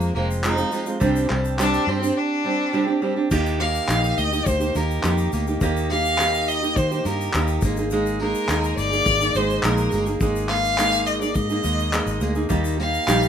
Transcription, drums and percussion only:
0.01 shaker soft
0.16 tambourine medium
0.31 shaker soft
0.44 clap loud
0.44 shaker medium
0.57 shaker medium
0.72 tambourine medium
0.72 shaker medium
0.86 shaker soft
1.01 kick loud
1.01 shaker medium
1.16 shaker medium
1.30 clap loud
1.30 tambourine medium
1.45 shaker soft
1.59 clap loud
1.59 shaker medium
1.74 shaker soft
1.88 tambourine medium
2.03 shaker medium
3.31 kick loud
3.31 crash loud
3.31 shaker medium
3.46 shaker medium
3.60 tambourine medium
3.75 shaker soft
3.88 clap loud
3.88 shaker medium
4.04 shaker medium
4.18 tambourine medium
4.18 shaker soft
4.33 shaker medium
4.46 kick loud
4.46 shaker medium
4.61 shaker medium
4.75 tambourine medium
4.75 shaker medium
4.91 shaker soft
5.03 clap loud
5.03 shaker medium
5.18 shaker soft
5.32 tambourine medium
5.32 shaker medium
5.47 shaker soft
5.61 kick loud
5.61 shaker medium
5.77 shaker medium
5.90 tambourine medium
6.06 shaker soft
6.18 clap loud
6.18 shaker medium
6.34 shaker soft
6.48 tambourine medium
6.48 shaker medium
6.64 shaker medium
6.76 kick loud
6.76 shaker medium
6.92 shaker soft
7.05 tambourine medium
7.05 shaker medium
7.21 shaker soft
7.33 clap loud
7.33 shaker medium
7.48 shaker medium
7.61 kick loud
7.61 tambourine medium
7.61 shaker medium
7.77 shaker soft
7.91 shaker medium
8.06 shaker medium
8.20 tambourine medium
8.35 shaker soft
8.48 clap loud
8.48 shaker medium
8.64 shaker medium
8.78 tambourine medium
8.78 shaker medium
8.93 shaker medium
9.06 kick loud
9.06 shaker medium
9.21 shaker medium
9.35 tambourine medium
9.35 shaker medium
9.50 shaker soft
9.63 clap loud
9.63 shaker medium
9.77 shaker medium
9.91 tambourine medium
9.91 shaker medium
10.06 shaker soft
10.21 kick loud
10.21 shaker medium
10.36 shaker medium
10.49 clap loud
10.49 tambourine medium
10.65 shaker soft
10.78 clap loud
10.78 shaker medium
10.93 shaker soft
11.07 tambourine medium
11.07 shaker medium
11.22 shaker medium
11.35 kick loud
11.35 shaker medium
11.50 shaker soft
11.64 tambourine medium
11.64 shaker medium
11.80 shaker soft
11.93 clap loud
11.93 shaker medium
12.07 shaker medium
12.21 tambourine medium
12.21 shaker medium
12.35 shaker soft
12.49 kick loud
12.49 shaker medium
12.65 shaker medium
12.80 tambourine medium
12.94 shaker medium
13.08 clap loud
13.08 shaker medium
13.23 shaker medium

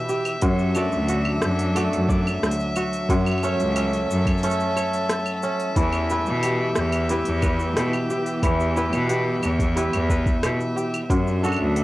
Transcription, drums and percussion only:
0.09 shaker medium
0.25 open hi-hat soft
0.25 claves medium
0.25 shaker soft
0.41 kick loud
0.41 open hi-hat medium
0.41 shaker soft
0.59 shaker soft
0.75 claves medium
0.75 shaker medium
0.92 shaker soft
1.08 open hi-hat medium
1.08 shaker soft
1.25 claves medium
1.42 cross-stick medium
1.42 shaker medium
1.59 open hi-hat soft
1.76 open hi-hat medium
1.76 claves medium
1.76 shaker soft
1.93 open hi-hat soft
2.09 kick loud
2.09 shaker medium
2.27 claves medium
2.27 shaker soft
2.43 cross-stick medium
2.43 shaker soft
2.51 open hi-hat medium
2.60 shaker soft
2.76 claves medium
2.76 shaker medium
2.93 open hi-hat soft
2.93 shaker soft
3.09 kick loud
3.09 open hi-hat medium
3.09 shaker soft
3.26 claves medium
3.26 shaker soft
3.32 claves medium
3.38 claves medium
3.43 claves soft
3.43 shaker medium
3.49 claves soft
3.54 claves soft
3.60 open hi-hat soft
3.60 shaker soft
3.76 open hi-hat medium
3.76 claves medium
3.76 shaker soft
3.93 open hi-hat soft
4.11 shaker medium
4.26 kick medium
4.26 open hi-hat soft
4.26 claves medium
4.26 shaker soft
4.38 shaker soft
4.43 open hi-hat medium
4.43 shaker soft
4.49 open hi-hat soft
4.49 shaker soft
4.60 shaker soft
4.77 claves medium
4.77 shaker medium
4.93 open hi-hat soft
4.93 shaker soft
5.09 cross-stick medium
5.09 open hi-hat medium
5.09 shaker soft
5.26 claves medium
5.26 shaker soft
5.43 shaker medium
5.60 open hi-hat soft
5.60 shaker soft
5.76 kick loud
5.76 open hi-hat medium
5.76 shaker soft
5.92 claves medium
5.92 shaker soft
6.10 shaker medium
6.26 shaker soft
6.43 open hi-hat medium
6.43 claves medium
6.43 shaker soft
6.75 cross-stick medium
6.75 shaker medium
6.92 open hi-hat soft
6.92 claves medium
6.92 shaker soft
7.09 open hi-hat medium
7.09 shaker soft
7.25 open hi-hat soft
7.42 kick loud
7.42 claves medium
7.42 shaker medium
7.60 shaker soft
7.77 cross-stick medium
7.77 open hi-hat medium
7.77 shaker soft
7.93 claves medium
7.93 shaker soft
8.10 shaker medium
8.26 open hi-hat soft
8.26 shaker soft
8.43 kick loud
8.43 open hi-hat medium
8.43 claves medium
8.43 shaker soft
8.60 shaker soft
8.77 shaker medium
8.93 claves medium
8.93 shaker soft
9.10 open hi-hat medium
9.10 shaker soft
9.43 claves medium
9.43 shaker medium
9.60 kick loud
9.60 open hi-hat soft
9.60 shaker soft
9.77 open hi-hat medium
9.77 shaker soft
9.93 open hi-hat soft
9.93 claves medium
10.10 kick medium
10.10 shaker medium
10.26 kick loud
10.26 shaker soft
10.43 cross-stick medium
10.43 open hi-hat medium
10.43 claves medium
10.43 shaker soft
10.61 shaker soft
10.77 shaker medium
10.94 open hi-hat soft
10.94 claves medium
10.94 shaker soft
11.10 kick loud
11.10 open hi-hat medium
11.10 shaker soft
11.27 shaker soft
11.44 claves soft
11.44 shaker medium
11.46 claves soft
11.49 claves soft
11.52 claves medium
11.52 shaker soft
11.54 claves medium
11.56 claves medium
11.76 open hi-hat medium
11.76 shaker soft

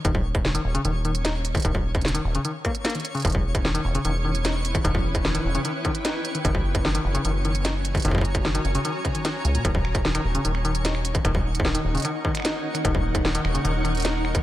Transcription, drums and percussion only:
0.05 kick loud
0.05 closed hi-hat medium
0.15 kick loud
0.35 kick loud
0.35 closed hi-hat medium
0.45 snare loud
0.55 closed hi-hat medium
0.75 closed hi-hat medium
0.85 closed hi-hat medium
1.05 closed hi-hat soft
1.15 closed hi-hat medium
1.25 snare loud
1.25 closed hi-hat medium
1.45 closed hi-hat medium
1.55 kick loud
1.55 closed hi-hat soft
1.57 closed hi-hat soft
1.60 closed hi-hat soft
1.62 kick loud
1.62 closed hi-hat soft
1.65 closed hi-hat medium
1.75 kick loud
1.95 kick loud
1.95 closed hi-hat soft
2.01 snare loud
2.01 closed hi-hat soft
2.08 closed hi-hat soft
2.15 closed hi-hat medium
2.35 closed hi-hat medium
2.45 closed hi-hat medium
2.65 kick medium
2.65 closed hi-hat soft
2.75 closed hi-hat soft
2.85 snare loud
2.85 closed hi-hat medium
2.90 closed hi-hat soft
2.95 closed hi-hat soft
3.00 closed hi-hat soft
3.05 closed hi-hat medium
3.15 closed hi-hat soft
3.17 closed hi-hat soft
3.20 closed hi-hat soft
3.22 kick loud
3.22 closed hi-hat soft
3.25 closed hi-hat medium
3.27 closed hi-hat soft
3.30 closed hi-hat soft
3.32 kick loud
3.32 closed hi-hat soft
3.55 kick loud
3.55 closed hi-hat medium
3.65 snare loud
3.75 closed hi-hat medium
3.95 closed hi-hat medium
4.05 closed hi-hat medium
4.35 closed hi-hat soft
4.45 snare loud
4.45 closed hi-hat medium
4.65 closed hi-hat medium
4.75 kick loud
4.75 closed hi-hat soft
4.85 kick loud
4.85 closed hi-hat medium
4.95 kick loud
5.15 kick loud
5.15 closed hi-hat soft
5.25 snare loud
5.35 closed hi-hat medium
5.55 closed hi-hat soft
5.65 closed hi-hat medium
5.85 kick medium
5.85 closed hi-hat soft
5.95 closed hi-hat soft
6.05 snare loud
6.05 closed hi-hat medium
6.25 closed hi-hat medium
6.35 closed hi-hat soft
6.45 kick loud
6.45 closed hi-hat medium
6.55 kick loud
6.75 kick loud
6.75 closed hi-hat soft
6.85 snare loud
6.95 closed hi-hat medium
7.15 closed hi-hat medium
7.25 closed hi-hat medium
7.45 closed hi-hat soft
7.55 closed hi-hat soft
7.65 snare loud
7.65 closed hi-hat medium
7.85 closed hi-hat medium
7.95 kick medium
7.95 closed hi-hat soft
7.97 closed hi-hat soft
8.00 closed hi-hat soft
8.02 kick medium
8.02 closed hi-hat soft
8.05 kick medium
8.05 closed hi-hat medium
8.11 kick medium
8.15 kick loud
8.18 kick medium
8.21 kick loud
8.21 closed hi-hat soft
8.35 kick loud
8.35 closed hi-hat medium
8.45 snare loud
8.55 closed hi-hat medium
8.65 closed hi-hat soft
8.75 closed hi-hat medium
8.85 closed hi-hat medium
9.05 kick medium
9.05 closed hi-hat soft
9.15 closed hi-hat medium
9.25 snare loud
9.25 closed hi-hat medium
9.45 closed hi-hat medium
9.55 closed hi-hat medium
9.65 kick loud
9.65 closed hi-hat medium
9.75 kick loud
9.85 finger snap medium
9.95 kick loud
9.95 closed hi-hat medium
10.05 snare loud
10.15 finger snap medium
10.15 closed hi-hat medium
10.35 closed hi-hat medium
10.45 closed hi-hat medium
10.55 finger snap medium
10.65 closed hi-hat soft
10.75 closed hi-hat medium
10.85 snare loud
10.85 closed hi-hat medium
10.95 finger snap medium
11.05 closed hi-hat medium
11.15 kick loud
11.15 closed hi-hat medium
11.25 finger snap medium
11.25 kick loud
11.25 closed hi-hat medium
11.35 kick loud
11.55 closed hi-hat medium
11.60 kick loud
11.65 finger snap medium
11.65 snare loud
11.75 closed hi-hat medium
11.95 closed hi-hat soft
11.97 closed hi-hat soft
12.00 closed hi-hat soft
12.02 finger snap medium
12.02 closed hi-hat soft
12.05 closed hi-hat medium
12.25 kick medium
12.35 finger snap medium
12.35 closed hi-hat medium
12.37 finger snap medium
12.40 finger snap soft
12.42 finger snap soft
12.45 finger snap soft
12.45 snare loud
12.45 closed hi-hat medium
12.47 finger snap soft
12.50 finger snap soft
12.52 finger snap soft
12.75 finger snap medium
12.75 closed hi-hat medium
12.85 kick loud
12.85 closed hi-hat medium
12.95 kick loud
13.15 finger snap soft
13.15 kick loud
13.15 closed hi-hat medium
13.25 snare loud
13.35 closed hi-hat medium
13.45 finger snap medium
13.55 closed hi-hat medium
13.65 closed hi-hat medium
13.85 finger snap medium
13.85 closed hi-hat soft
13.95 closed hi-hat soft
13.97 closed hi-hat soft
14.00 closed hi-hat soft
14.02 snare loud
14.02 closed hi-hat soft
14.05 closed hi-hat medium
14.25 finger snap medium
14.35 kick loud
14.35 closed hi-hat medium

